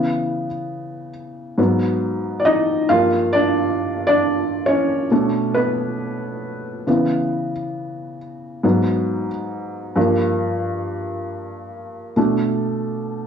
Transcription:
0.00 0.45 C#3 medium
0.00 0.45 E3 medium
0.00 0.46 B3 medium
0.00 1.09 B4 medium
1.58 2.86 G#2 medium
1.58 2.86 F#3 soft
1.58 2.87 B3 medium
2.40 2.45 D5 medium
2.45 2.88 D#4 medium
2.45 2.87 D#5 loud
2.89 5.06 G2 medium
2.89 5.07 F3 medium
2.89 5.07 A#3 medium
2.89 3.32 F4 medium
2.89 3.35 F5 loud
3.33 4.04 D4 medium
3.33 4.05 D5 loud
4.07 4.63 D4 medium
4.07 4.62 D5 medium
4.66 5.52 C#4 medium
4.66 5.57 C#5 medium
5.11 6.84 B2 medium
5.11 6.84 A3 soft
5.11 6.84 D4 medium
5.55 6.87 B3 medium
5.55 8.16 B4 medium
6.87 7.51 C#3 medium
6.87 7.51 E3 medium
6.87 7.52 B3 medium
8.63 9.28 G#2 medium
8.63 9.28 F#3 soft
8.63 9.28 B3 medium
9.96 12.13 G2 medium
9.96 12.13 F3 medium
9.96 12.13 A#3 medium
12.16 13.27 B2 medium
12.16 13.27 A3 medium
12.16 13.27 D4 medium

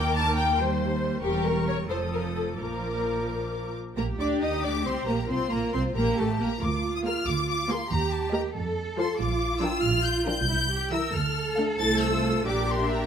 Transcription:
0.00 1.20 D#2 medium
0.00 0.56 D#3 medium
0.00 0.56 A#4 medium
0.00 0.14 G5 medium
0.00 0.58 D6 medium
0.15 0.36 A5 medium
0.36 0.57 G5 medium
0.58 1.22 G3 medium
0.58 1.23 C5 medium
0.58 1.23 C6 medium
1.22 1.86 E1 medium
1.22 1.86 E2 medium
1.22 1.86 G3 medium
1.22 1.43 G4 medium
1.22 1.86 A#4 medium
1.22 1.86 C#6 medium
1.45 1.67 A#4 medium
1.67 1.75 C#5 medium
1.89 2.58 F1 medium
1.89 2.59 F2 soft
1.89 2.58 F3 soft
1.89 2.57 A4 soft
1.89 1.98 C5 medium
1.89 2.58 D#6 soft
2.12 2.20 A#4 medium
2.36 2.44 A4 medium
2.58 3.76 A#1 medium
2.58 3.77 A#2 soft
2.58 3.74 F3 soft
2.58 3.77 A#4 soft
2.58 3.73 A#4 medium
2.58 3.75 D6 soft
3.97 4.18 A#1 medium
3.97 4.05 A#3 medium
3.97 5.26 G4 medium
3.97 4.05 A#4 medium
3.97 4.05 A#5 medium
4.19 4.41 D2 soft
4.19 4.41 D4 medium
4.19 4.41 D5 medium
4.19 4.28 D6 medium
4.41 4.63 D#2 medium
4.41 4.64 D#4 medium
4.41 4.63 D#5 medium
4.41 4.64 D#6 medium
4.63 4.86 D2 medium
4.63 4.86 D4 medium
4.63 4.72 D5 medium
4.63 4.86 D6 medium
4.86 5.08 C2 medium
4.86 5.08 C4 medium
4.86 5.08 C5 medium
4.86 5.08 C6 medium
5.07 5.29 A#1 medium
5.07 5.16 A#3 medium
5.07 5.30 A#4 medium
5.07 5.29 A#5 medium
5.29 5.38 C2 medium
5.29 5.51 C4 medium
5.29 5.96 F4 soft
5.29 5.52 C5 medium
5.29 5.52 C6 medium
5.52 5.60 A#1 medium
5.52 5.74 A#3 medium
5.52 5.74 A#4 medium
5.52 5.74 A#5 medium
5.73 5.96 C2 medium
5.73 5.82 C4 medium
5.73 5.96 C5 medium
5.73 5.81 C6 medium
5.96 6.18 A#1 medium
5.96 6.18 A#3 medium
5.96 6.60 G4 medium
5.96 6.17 A#4 medium
5.96 6.18 A#5 medium
6.17 6.26 A1 medium
6.17 6.40 A3 medium
6.17 6.25 A4 medium
6.17 6.39 A5 medium
6.39 6.48 A#1 medium
6.39 6.48 A#3 medium
6.39 6.61 A#4 medium
6.39 6.62 A#5 medium
6.61 7.13 D2 medium
6.61 7.88 F4 medium
6.61 6.94 D6 medium
6.95 6.99 D#6 medium
7.05 7.22 A#3 medium
7.05 7.22 G#4 medium
7.05 7.21 A#4 medium
7.05 7.21 F5 medium
7.05 7.26 F6 medium
7.27 7.78 D2 medium
7.27 7.48 D6 loud
7.49 7.70 D6 medium
7.70 7.86 A#3 medium
7.70 7.86 G#4 medium
7.70 7.86 A#4 medium
7.70 7.85 F5 medium
7.70 7.91 C6 medium
7.90 8.42 D#2 medium
7.90 8.54 G4 medium
7.90 8.12 A#5 medium
8.11 8.33 A5 medium
8.33 8.49 A#3 medium
8.33 8.49 G4 medium
8.33 8.49 A#4 medium
8.33 8.49 D#5 medium
8.33 8.41 A#5 medium
8.54 9.05 F2 medium
8.54 9.18 A4 medium
8.98 9.14 F3 medium
8.98 9.14 F4 medium
8.98 9.14 A4 medium
8.98 9.14 C5 medium
8.98 9.18 C6 medium
9.18 9.70 A#1 medium
9.18 10.49 F4 medium
9.18 9.61 D6 medium
9.62 9.78 F3 medium
9.62 9.78 D4 medium
9.62 9.78 A#4 medium
9.62 9.78 G5 medium
9.62 9.84 E6 medium
9.83 10.35 A#1 medium
9.83 10.05 F6 loud
10.05 10.26 G6 medium
10.26 10.43 F3 medium
10.26 10.43 D4 medium
10.26 10.43 A#4 medium
10.26 10.42 G5 medium
10.26 10.91 G6 medium
10.48 11.00 C2 medium
10.48 10.70 E4 medium
10.70 10.91 G4 medium
10.92 11.08 E3 medium
10.92 11.08 E4 medium
10.92 11.14 A#4 medium
10.92 11.08 A#4 medium
10.92 11.08 E5 medium
10.92 11.13 E6 medium
11.13 11.65 D2 medium
11.13 12.46 A4 medium
11.13 11.57 F6 medium
11.57 11.74 A3 medium
11.57 11.74 D4 medium
11.57 11.73 A4 medium
11.57 11.73 F5 medium
11.79 12.42 C2 medium
11.79 12.42 A3 medium
11.79 12.10 E4 medium
11.79 12.42 A4 medium
11.79 12.42 C5 medium
11.79 12.00 A6 loud
12.01 12.46 E6 medium
12.13 12.45 F4 medium
12.46 13.06 A#1 medium
12.46 13.06 D4 medium
12.46 13.06 G4 medium
12.46 13.06 A#4 medium
12.46 12.81 D5 medium
12.46 12.69 D6 medium
12.70 12.92 C6 medium
12.80 13.06 E5 medium
12.93 13.06 A#5 medium

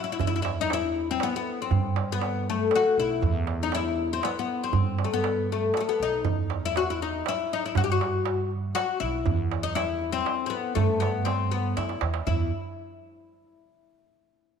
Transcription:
0.04 0.11 E4 medium
0.12 0.19 E4 medium
0.19 1.17 E2 loud
0.19 0.26 E4 medium
0.19 darbuka dum medium
0.27 0.34 E4 medium
0.36 0.41 E4 medium
0.42 0.49 E4 medium
0.42 darbuka tek medium
0.61 0.73 D#4 medium
0.70 1.10 E4 medium
0.70 darbuka tek medium
0.95 darbuka ka soft
1.11 1.23 C4 medium
1.20 1.35 B3 medium
1.20 darbuka tek medium
1.36 1.61 B3 medium
1.62 2.12 C4 medium
1.71 2.68 G2 medium
1.71 darbuka dum medium
1.96 darbuka tek medium
2.12 2.49 B3 medium
2.21 darbuka tek medium
2.46 2.74 A3 medium
2.46 darbuka ka soft
2.71 darbuka tek medium
2.75 2.99 F#4 medium
2.98 3.21 B1 medium
2.98 3.58 E4 medium
3.22 4.19 E2 loud
3.22 darbuka dum medium
3.47 darbuka tek medium
3.63 3.74 D#4 medium
3.72 4.13 E4 medium
3.72 darbuka tek medium
3.98 darbuka ka soft
4.13 4.24 C4 medium
4.23 4.37 B3 medium
4.23 darbuka tek medium
4.39 4.63 B3 medium
4.64 5.07 C4 medium
4.73 5.71 G2 medium
4.73 darbuka dum medium
4.99 darbuka tek medium
5.04 5.12 A3 medium
5.14 5.48 B3 medium
5.24 darbuka tek medium
5.49 5.77 A3 medium
5.49 darbuka ka soft
5.61 darbuka ka soft
5.74 5.80 B3 medium
5.74 darbuka tek medium
5.81 5.87 A3 medium
5.89 6.01 B3 medium
5.99 6.24 B1 medium
5.99 6.65 D#4 medium
5.99 darbuka ka soft
6.25 7.21 E2 loud
6.25 darbuka dum medium
6.50 darbuka tek medium
6.65 6.77 E4 medium
6.76 6.89 F#4 medium
6.76 darbuka tek medium
6.90 7.02 E4 medium
7.00 7.27 D#4 medium
7.00 darbuka ka soft
7.26 7.53 E4 medium
7.26 darbuka tek medium
7.53 7.65 D#4 medium
7.66 7.77 E4 medium
7.75 8.72 G2 medium
7.75 7.83 F#4 medium
7.75 darbuka dum medium
7.84 7.90 G4 medium
7.92 8.48 F#4 medium
8.01 darbuka tek medium
8.26 darbuka tek medium
8.51 darbuka ka soft
8.75 9.00 F#4 loud
8.75 darbuka tek medium
9.00 9.25 B1 medium
9.00 9.63 E4 medium
9.26 10.22 E2 loud
9.26 darbuka dum medium
9.52 darbuka tek medium
9.63 9.75 D#4 medium
9.75 10.12 E4 medium
9.75 darbuka tek medium
10.01 darbuka ka soft
10.12 10.45 C4 medium
10.26 darbuka tek medium
10.46 10.75 B3 medium
10.46 10.52 C4 medium
10.75 11.73 G2 loud
10.75 11.00 A3 medium
10.75 darbuka dum medium
11.00 11.27 B3 medium
11.00 darbuka tek medium
11.25 11.52 C4 medium
11.25 darbuka tek medium
11.51 11.77 B3 medium
11.77 11.99 F#2 medium
11.77 12.12 E4 medium
11.77 darbuka tek medium
11.89 darbuka ka medium
12.01 12.24 E2 medium
12.01 darbuka tek medium
12.14 darbuka ka medium
12.27 12.50 E2 medium
12.27 12.50 E4 medium
12.27 darbuka dum medium

